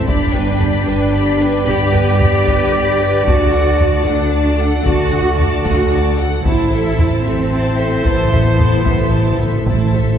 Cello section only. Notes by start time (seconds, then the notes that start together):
0.08 D4
1.68 G4
3.28 F#4
4.07 D4
4.86 F#4
5.66 F#4
6.46 E4
7.25 C4
8.05 B3
9.68 A3